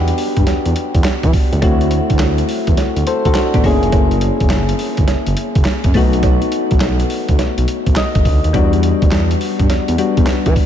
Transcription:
Already playing: analog synth bass E2, synth keys B3 D4 F#4 G4
0.08 closed hi-hat
0.18 open hi-hat
0.37 analog synth bass G2, kick, closed hi-hat
0.47 analog synth bass E2, snare, closed hi-hat, cowbell
0.66 analog synth bass E2, closed hi-hat
0.76 closed hi-hat
0.95 analog synth bass E2, kick, closed hi-hat
1.04 snare, clap, closed hi-hat, cowbell
1.23 analog synth bass E3, kick, closed hi-hat
1.33 kick, open hi-hat
1.52 analog synth bass C#2, closed hi-hat
1.62 analog synth bass D2, synth keys A3 C4 E4 F#4, kick, closed hi-hat, cowbell
1.81 closed hi-hat
1.91 closed hi-hat
2.10 analog synth bass D2, kick, closed hi-hat
2.19 analog synth bass D2, snare, clap, closed hi-hat, cowbell
2.38 closed hi-hat
2.49 open hi-hat
2.67 analog synth bass E2, kick, closed hi-hat
2.77 analog synth bass D2, snare, closed hi-hat, cowbell
2.96 analog synth bass D2, closed hi-hat
3.07 synth keys A4 C5, closed hi-hat
3.25 analog synth bass D2, synth keys F#4 A4, kick, closed hi-hat
3.35 synth keys D4 F#4, snare, clap, closed hi-hat, cowbell
3.54 analog synth bass A1, synth keys B3 D4, kick, closed hi-hat
3.64 analog synth bass F#1, synth keys A#3 C#4 E4 G#4, kick, open hi-hat
3.83 analog synth bass F1, closed hi-hat
3.92 analog synth bass F#1, kick, closed hi-hat, cowbell
4.11 closed hi-hat
4.21 closed hi-hat
4.40 analog synth bass E1, kick, closed hi-hat
4.50 analog synth bass F#1, snare, clap, closed hi-hat, cowbell
4.69 closed hi-hat
4.79 open hi-hat
4.97 analog synth bass G1, kick, closed hi-hat
5.08 analog synth bass F#1, snare, closed hi-hat, cowbell
5.26 analog synth bass F#1, closed hi-hat
5.37 closed hi-hat
5.55 analog synth bass F#1, kick, closed hi-hat
5.65 snare, clap, closed hi-hat, cowbell
5.84 analog synth bass F#2, kick, closed hi-hat
5.94 analog synth bass B1, synth keys A3 B3 D#4 F#4, kick, open hi-hat
6.13 closed hi-hat
6.23 kick, closed hi-hat, cowbell
6.42 closed hi-hat
6.52 closed hi-hat
6.71 analog synth bass B1, kick, closed hi-hat
6.80 analog synth bass B1, snare, clap, closed hi-hat, cowbell
7.00 closed hi-hat
7.10 open hi-hat
7.28 analog synth bass D2, kick, closed hi-hat
7.39 analog synth bass B1, snare, closed hi-hat, cowbell
7.58 analog synth bass B1, closed hi-hat
7.68 closed hi-hat
7.86 analog synth bass B1, kick, closed hi-hat
7.96 synth keys D#5, snare, clap, closed hi-hat, cowbell
8.15 analog synth bass F#1, kick, closed hi-hat
8.25 analog synth bass D2, kick, open hi-hat
8.44 analog synth bass D#2, closed hi-hat
8.53 analog synth bass E2, synth keys G3 B3 D4 F#4, kick, closed hi-hat, cowbell
8.73 closed hi-hat
8.83 closed hi-hat
9.02 analog synth bass D2, kick, closed hi-hat
9.11 analog synth bass E2, snare, clap, closed hi-hat, cowbell
9.31 closed hi-hat
9.41 open hi-hat
9.60 analog synth bass G2, kick, closed hi-hat
9.70 analog synth bass E2, snare, closed hi-hat, cowbell
9.88 analog synth bass E2, closed hi-hat
9.98 synth keys G3 B3 D4 F#4, closed hi-hat
10.17 analog synth bass E2, kick, closed hi-hat
10.27 snare, clap, closed hi-hat, cowbell
10.46 analog synth bass E3, kick, closed hi-hat
10.56 kick, open hi-hat

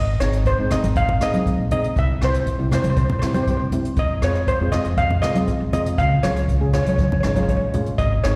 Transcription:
Already playing: upright bass G#1, steel pan D#5
0.20 upright bass G#1, steel pan G#3 C4 D#4 C#5, cross-stick, closed hi-hat
0.33 closed hi-hat
0.45 steel pan C5, kick, closed hi-hat
0.58 upright bass G#1, steel pan G#3 C4 D#4
0.71 steel pan G#3 C4 D#4 D#5, cross-stick, closed hi-hat, low conga
0.83 upright bass G#1, closed hi-hat, high conga
0.96 steel pan F5, kick, closed hi-hat
1.09 low conga
1.20 upright bass D#2, steel pan G#3 C4 D#4 D#5, cross-stick, closed hi-hat
1.33 steel pan G#3 C4 D#4, closed hi-hat, high conga
1.46 kick, closed hi-hat
1.58 upright bass A#1
1.71 steel pan G#3 C4 D#4 D#5, closed hi-hat, low conga
1.84 closed hi-hat
1.96 upright bass C2, steel pan E5, kick, closed hi-hat
2.21 upright bass C2, steel pan G3 C4 E4 C5, cross-stick, closed hi-hat
2.34 closed hi-hat
2.46 kick, closed hi-hat
2.59 upright bass C2, steel pan G3 C4 E4
2.71 steel pan G3 C4 E4 C5, cross-stick, closed hi-hat, low conga
2.82 upright bass C2, steel pan C5, closed hi-hat, high conga
2.90 steel pan C5
2.96 steel pan C5, kick, closed hi-hat
3.05 steel pan C5
3.10 steel pan C5, low conga
3.19 upright bass G2, steel pan G3 C4 C5, cross-stick, closed hi-hat
3.24 steel pan E4 C5
3.34 steel pan G3 C4 G4 C5, closed hi-hat, high conga
3.43 steel pan C5, kick
3.47 steel pan C5, closed hi-hat
3.57 upright bass C2, steel pan C5
3.72 steel pan G3 C4 E4, closed hi-hat, low conga
3.85 closed hi-hat
3.96 upright bass F2, steel pan D#5, kick, closed hi-hat
4.22 upright bass F2, steel pan G#3 C4 F4 C#5, cross-stick, closed hi-hat
4.35 closed hi-hat
4.47 steel pan C5, kick, closed hi-hat
4.60 upright bass F2, steel pan G#3 C4 F4
4.72 steel pan G#3 C4 F4 D#5, cross-stick, closed hi-hat, low conga
4.85 upright bass F2, closed hi-hat
4.97 steel pan F5, kick, closed hi-hat
5.11 low conga
5.22 upright bass C2, steel pan G#3 C4 F4 D#5, cross-stick, closed hi-hat
5.35 steel pan G#3 C4 F4, closed hi-hat, high conga
5.47 kick, closed hi-hat
5.60 upright bass F2
5.72 steel pan G#3 C4 F4 D#5, closed hi-hat, low conga
5.86 closed hi-hat
5.98 upright bass C#2, steel pan F5, kick, closed hi-hat
6.23 upright bass C#2, steel pan G#3 C#4 F4 C#5, cross-stick, closed hi-hat, high conga
6.36 closed hi-hat
6.48 kick, closed hi-hat
6.60 upright bass C#2, steel pan G#3 C#4 G#4
6.73 steel pan G#3 C#4 F4 C#5, cross-stick, closed hi-hat, low conga
6.82 upright bass C#2, steel pan C#5
6.86 steel pan C#5, closed hi-hat, high conga
6.96 steel pan C#5, kick, closed hi-hat, high conga
7.04 steel pan C#5
7.12 steel pan C#5, low conga
7.21 upright bass G#1, steel pan G#3 C#5, cross-stick, closed hi-hat
7.25 steel pan C#4 D#4 C#5
7.36 steel pan G#3 C#4 F4 C#5, closed hi-hat, high conga
7.43 steel pan C#5
7.48 steel pan C#5, kick, closed hi-hat
7.57 steel pan C#5
7.61 upright bass A1
7.73 steel pan G#3 C#4 F4, closed hi-hat, low conga
7.86 closed hi-hat
7.98 upright bass G#1, steel pan D#5, kick, closed hi-hat
8.23 upright bass G#1, steel pan G#3 C4 D#4 C#5, cross-stick, closed hi-hat

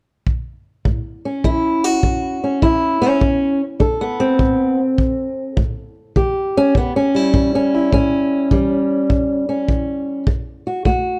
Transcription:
0.27 kick
0.85 steel-string acoustic guitar A2, kick
1.25 steel-string acoustic guitar C#4
1.44 steel-string acoustic guitar E3 E4, kick
1.84 steel-string acoustic guitar F#4
2.03 steel-string acoustic guitar E2, kick
2.44 steel-string acoustic guitar C#4
2.62 steel-string acoustic guitar E3 E4, kick
3.02 steel-string acoustic guitar C#4
3.21 steel-string acoustic guitar D3, kick
3.80 steel-string acoustic guitar D4 A4, kick
4.01 steel-string acoustic guitar B3
4.20 steel-string acoustic guitar C4
4.39 steel-string acoustic guitar A2, kick
4.98 kick
5.57 steel-string acoustic guitar A2, kick
6.16 steel-string acoustic guitar E3 G4, kick
6.57 steel-string acoustic guitar C#4
6.75 steel-string acoustic guitar E2 B3, kick
6.96 steel-string acoustic guitar C#4
7.15 steel-string acoustic guitar G3 E4
7.34 steel-string acoustic guitar E3, kick
7.55 steel-string acoustic guitar C#4
7.74 steel-string acoustic guitar E4
7.93 steel-string acoustic guitar A2 C#4, kick
8.51 steel-string acoustic guitar E3 G3, kick
9.10 steel-string acoustic guitar E2, kick
9.49 steel-string acoustic guitar C#4
9.68 steel-string acoustic guitar E3, kick
10.27 steel-string acoustic guitar D3, kick
10.67 steel-string acoustic guitar F#4
10.85 steel-string acoustic guitar A3 F#4, kick

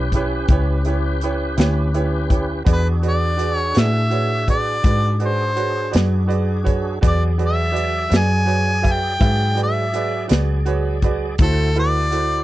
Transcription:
Already playing: fingered electric bass B1, tonewheel organ C#4 G4 B4
0.12 upright piano E4 G4 B4, kick, closed hi-hat
0.16 upright piano C#5
0.48 fingered electric bass C#2, upright piano E4 G4 B4 C#5, kick, closed hi-hat
0.85 upright piano E4 G4 B4 C#5, closed hi-hat
1.21 upright piano E4 G4 B4 C#5, closed hi-hat
1.57 fingered electric bass D2, upright piano E4 G4 B4 C#5, snare, closed hi-hat
1.94 upright piano E4 G4 B4 C#5, closed hi-hat
2.29 upright piano E4 G4 B4 C#5, kick, closed hi-hat
2.64 fingered electric bass E2, tonewheel organ D4 F#4 G#4, upright piano F#4 G#4 B4 D5, kick, closed hi-hat
2.73 harmonica B4
3.02 upright piano F#4 G#4 B4 D5, closed hi-hat
3.09 harmonica D5
3.37 upright piano F#4 G#4 B4 D5, closed hi-hat
3.55 harmonica C#5
3.74 fingered electric bass A2, upright piano F#4 G#4 B4 D5, snare, closed hi-hat
3.79 harmonica E5
4.10 upright piano F#4 G#4 B4 C#5, closed hi-hat
4.48 upright piano F#4 G#4 B4 D5, harmonica D5, kick, closed hi-hat
4.83 fingered electric bass G#2, upright piano F#4 G#4 B4 D5, kick, closed hi-hat
5.20 upright piano F#4 G#4 B4 D5, closed hi-hat
5.26 harmonica C5
5.56 upright piano F#4 G#4 B4 C#5, closed hi-hat
5.91 fingered electric bass F#2, upright piano F#4 G#4 B4 D5, closed hi-hat
5.96 snare
6.27 upright piano F#4 G#4 B4 D5, closed hi-hat
6.64 upright piano F#4 G#4 B4 C#5, kick, closed hi-hat
7.01 fingered electric bass E2, tonewheel organ F#3 G#4 D5, upright piano F#4 G#4 B4 D5, kick, closed hi-hat
7.07 harmonica D5
7.38 upright piano F#4 G#4 B4 D5, closed hi-hat
7.46 harmonica E5
7.72 upright piano F#4 G#4 B4 D5
7.76 closed hi-hat
8.09 fingered electric bass F#2, upright piano F#4 G#4 B4 D5, closed hi-hat
8.14 harmonica G#5, snare
8.45 upright piano F#4 G#4 B4 C#5, closed hi-hat
8.82 upright piano F#4 G#4 B4 E5, kick, closed hi-hat
8.92 harmonica G5
9.19 fingered electric bass G#2, upright piano F#4 G#4 B4 E5, kick, closed hi-hat
9.55 upright piano F#4 G#4 B4 D5, closed hi-hat
9.63 harmonica E5
9.93 upright piano F#4 G#4 B4 D5, closed hi-hat
10.28 fingered electric bass C#2, upright piano F#4 G#4 B4 D5, closed hi-hat
10.32 snare
10.65 upright piano F#4 G#4 B4 C#5, closed hi-hat
11.02 upright piano F#4 G#4 B4 D5, kick, closed hi-hat
11.38 fingered electric bass D2, tonewheel organ E4 F#4 C5, upright piano E4 F#4 A4 C5, kick, closed hi-hat
11.42 harmonica A4
11.75 upright piano E4 F#4 A4 B4, closed hi-hat
11.80 harmonica D5
12.11 upright piano E4 F#4 A4 C5, closed hi-hat

